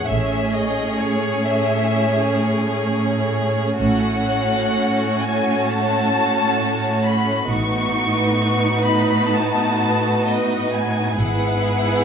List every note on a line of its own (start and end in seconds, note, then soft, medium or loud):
0.07 0.96 A1 soft
0.07 3.78 A2 soft
0.07 3.78 A3 soft
0.07 3.78 C#4 soft
0.07 3.79 G#4 soft
0.07 3.79 C#5 soft
0.07 0.53 E5 medium
0.54 0.99 D#5 soft
0.99 1.45 C#5 medium
1.45 2.39 E5 medium
3.80 4.72 A1 soft
3.80 7.46 A2 soft
3.80 7.45 A3 soft
3.80 7.45 C#4 soft
3.80 7.45 F#4 soft
3.80 7.45 C#5 soft
3.80 5.19 F#5 medium
5.21 5.68 G#5 medium
5.68 7.03 A5 medium
7.04 7.50 B5 medium
7.49 8.37 A1 soft
7.49 11.15 A2 soft
7.49 11.15 B3 soft
7.49 11.19 D#4 soft
7.49 11.15 F#4 soft
7.49 11.19 B4 soft
7.49 8.86 C#6 medium
8.85 9.30 B5 medium
9.33 10.28 A5 medium
10.28 10.74 D#5 medium
10.75 11.20 G#5 medium
11.19 12.04 G#1 soft
11.19 12.04 G#2 soft
11.19 12.04 B3 soft
11.19 12.04 E4 soft
11.19 12.04 G#4 soft
11.19 12.04 B4 soft
11.19 12.04 F#5 soft